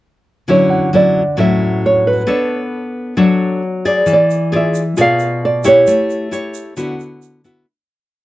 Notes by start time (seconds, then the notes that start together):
0.48 D3 F#3 C#4 E4 C#5
0.70 F#5
0.93 F#3 C#4 E4 D5
1.37 A2 F#3 C#4 E4 E5
1.86 C#5
2.07 B4
2.27 B3 D4 A4 C#5
3.17 F#3 D4 A4 C#5
3.85 G#4 D5
4.06 E3, shaker
4.13 D5
4.31 shaker
4.52 F4 G#4 D5
4.56 E5
4.75 shaker
4.97 B2 F4 G#4 D5, shaker
5.01 F5
5.19 shaker
5.45 D5
5.64 E4 G4 C#5, shaker
5.87 A3, shaker
6.10 shaker
6.31 E4 G4 C#5, shaker
6.54 shaker
6.77 D3 B3 E4 F#4, shaker
7.00 shaker
7.22 shaker
7.44 B3 E4 F#4, shaker